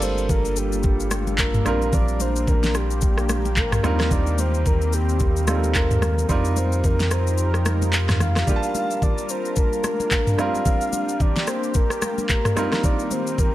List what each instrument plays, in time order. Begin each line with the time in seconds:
Already playing: sub bass G1, grand piano G3 A#3 D4 F4 A4, analog synth pad G3 A#3 D4 F4
0.02 soft synth lead C5, high conga, shaker
0.18 shaker
0.29 soft synth lead A#4, kick, low conga, shaker
0.45 shaker
0.56 soft synth lead G4, shaker
0.72 shaker
0.83 kick, shaker
1.00 shaker
1.11 cross-stick, high conga, shaker
1.27 high conga, shaker
1.38 soft synth lead A#4, kick, clap, shaker
1.54 mid tom, shaker
1.65 sub bass A#1, grand piano G3 C4 D4 F4 A#4, analog synth pad A#3 G4, cross-stick, high conga, shaker
1.82 high conga, shaker
1.93 soft synth lead D5, kick, low conga, shaker
2.08 shaker
2.20 soft synth lead C5, high conga, shaker
2.36 shaker
2.48 soft synth lead A#4, kick, low conga, shaker
2.63 snare, shaker
2.74 soft synth lead G4, cross-stick, shaker
2.91 shaker
3.01 kick, shaker
3.18 cross-stick, shaker
3.29 cross-stick, high conga, shaker
3.45 high conga, shaker
3.56 soft synth lead A#4, kick, clap, shaker
3.72 cross-stick, mid tom, shaker
3.83 sub bass D#2, analog synth pad D#3 C4, grand piano G3 C4 D#4 F4 A#4, cross-stick, high conga, shaker
4.00 cross-stick, snare, high conga, shaker
4.11 soft synth lead D5, kick, low conga, shaker
4.27 shaker
4.38 soft synth lead C5, high conga, shaker
4.54 shaker
4.66 soft synth lead A#4, kick, low conga, shaker
4.82 shaker
4.93 soft synth lead G4, shaker
5.09 shaker
5.20 kick, shaker
5.36 shaker
5.47 grand piano G3 C4 D#4 F4 A4, cross-stick, high conga, shaker
5.55 grand piano A#4
5.64 high conga, shaker
5.75 soft synth lead A#4, kick, clap, shaker
5.91 mid tom, shaker
6.02 cross-stick, high conga, shaker
6.18 high conga, shaker
6.29 sub bass F2, analog synth pad F3 D#4 G4 A#4, grand piano G3 C4 D#4 F4 A#4, soft synth lead D5, kick, low conga, shaker
6.45 shaker
6.56 soft synth lead C5, high conga, shaker
6.72 shaker
6.84 soft synth lead A#4, kick, low conga, shaker
7.00 snare, shaker
7.11 soft synth lead C5, cross-stick, shaker
7.27 shaker
7.38 shaker
7.54 cross-stick, shaker
7.66 cross-stick, high conga, shaker
7.82 high conga, shaker
7.93 clap, shaker
8.09 cross-stick, snare, mid tom, shaker
8.20 soft synth lead F5, cross-stick, high conga, low conga, shaker
8.36 cross-stick, snare, shaker
8.47 grand piano G3 A#3 D4 F4 G4, analog synth pad G3 D4 F4 A#4, kick, low conga, shaker
8.56 grand piano A5
8.63 shaker
8.75 high conga, shaker
8.91 shaker
9.02 soft synth lead D5, kick, low conga, shaker
9.18 shaker
9.29 soft synth lead C5, shaker
9.45 shaker
9.56 soft synth lead A#4, kick, shaker
9.73 shaker
9.84 cross-stick, high conga, shaker
10.00 high conga, shaker
10.11 kick, clap, shaker
10.27 mid tom, shaker
10.38 grand piano G3 C4 D4 F4 A#4, analog synth pad A#3 G4, soft synth lead F5, cross-stick, high conga, shaker
10.54 high conga, shaker
10.66 kick, low conga, shaker
10.81 shaker
10.93 high conga, shaker
11.09 shaker
11.20 soft synth lead D5, kick, low conga, shaker
11.36 snare, shaker
11.47 soft synth lead C5, cross-stick, shaker
11.63 shaker
11.74 soft synth lead A#4, kick, shaker
11.90 cross-stick, shaker
12.02 cross-stick, high conga, shaker
12.18 high conga, shaker
12.29 soft synth lead A#4, kick, clap, shaker
12.45 cross-stick, mid tom, shaker
12.56 analog synth pad D#3 C4 G4, grand piano G3 C4 D#4 F4 A#4, cross-stick, high conga, shaker
12.72 cross-stick, snare, high conga, shaker
12.84 soft synth lead D5, kick, low conga, shaker
12.99 shaker
13.11 soft synth lead C5, high conga, shaker
13.27 shaker
13.38 soft synth lead A#4, kick, low conga, shaker